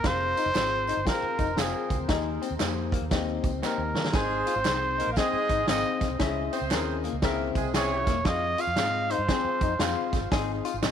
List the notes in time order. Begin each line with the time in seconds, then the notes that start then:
0.04 F1 C4 F4 G#4 C5 F5, kick, snare, closed hi-hat, tambourine
0.37 D#4, closed hi-hat, tambourine
0.46 F1
0.55 G#1 C4 F4 G#4 C5, snare, clap, closed hi-hat, tambourine
0.87 D#4, closed hi-hat, tambourine
0.97 G1
1.05 C4 F4 G#4 A#4 F5, kick, snare, closed hi-hat, tambourine
1.23 muted fingered electric bass stroke
1.38 F1 D#4, kick, closed hi-hat, tambourine
1.56 F1 C4 F4 G#4 F5, snare, clap, closed hi-hat, tambourine
1.90 C#2, kick, closed hi-hat, tambourine
2.00 D2
2.08 D#2 A#3 D#4 G4 D#5, kick, snare, closed hi-hat, tambourine
2.42 C4, closed hi-hat, tambourine
2.51 D#2
2.59 F2 A#3 D#4 G4 C5, snare, clap, closed hi-hat, tambourine
2.92 A#3, kick, closed hi-hat
3.01 D#2
3.11 A#3 C4 D#4 G4 D#5, kick, snare, closed hi-hat, tambourine
3.43 C#2, kick, closed hi-hat, tambourine
3.62 A#3 C4 D#4 G4 A#4 D#5, snare, clap, tambourine
3.78 D#2
3.94 D#3 A#3, snare, tambourine
4.04 snare
4.13 G#1 G#3 C4 D#4 G#4 C5 D#5, kick, snare, closed hi-hat, tambourine
4.47 F4, closed hi-hat, tambourine
4.56 G#1 C4 C5
4.65 C2 C4 D#4 G#4 C5, snare, clap, closed hi-hat, tambourine
4.98 A#3 D#4 A#4, closed hi-hat
5.07 A#1
5.12 F5, tambourine
5.16 G#3 C4 D#4 G#4 D#5, kick, snare, closed hi-hat
5.33 muted fingered electric bass stroke
5.49 G#1 D#4, kick, closed hi-hat, tambourine
5.67 G#1 C4 D#4 G#4 D#5 F5, snare, clap, closed hi-hat, tambourine
6.01 B1, kick, snare, closed hi-hat, tambourine
6.10 C2
6.19 C#2 C#4 E4 G#4 E5, kick, snare, closed hi-hat, tambourine
6.53 C4 C5, closed hi-hat, tambourine
6.61 C#2
6.70 D#2 C#4 E4 G#4 A#4, snare, clap, closed hi-hat, tambourine
7.04 A#3, closed hi-hat, tambourine
7.13 C#2
7.22 C#3 A#3 C4 E4 G#4 A#4 E5, kick, snare, closed hi-hat, tambourine
7.55 C2 G#3 G#4, kick, closed hi-hat, tambourine
7.74 G#3 C4 C#4 E4 G#4 C#5 E5, snare, clap, closed hi-hat, tambourine
8.07 E1 A#3, kick, snare, closed hi-hat, tambourine
8.25 F2 C4 F4 G#4 D#5 F5, kick, snare, closed hi-hat, tambourine
8.58 F4 F5, closed hi-hat, tambourine
8.67 F2
8.76 G#2 C4 F4 G#4 F5, snare, clap, closed hi-hat, tambourine
9.10 D#4 C5, closed hi-hat, tambourine
9.18 G2
9.28 C4 F4 G#4 G#5, kick, snare, closed hi-hat, tambourine
9.44 muted fingered electric bass stroke
9.61 F2 D#4, kick, closed hi-hat, tambourine
9.79 F2 C4 F4 G#4 F5, snare, clap, closed hi-hat, tambourine
10.12 F#1, kick, snare, closed hi-hat, tambourine
10.21 G1
10.31 G#1 C4 D#4 G#4 D#5, kick, snare, closed hi-hat, tambourine
10.65 F4, closed hi-hat, tambourine
10.74 G#1
10.82 A#1 C4 D#4 G#4 D#5, snare, clap, closed hi-hat, tambourine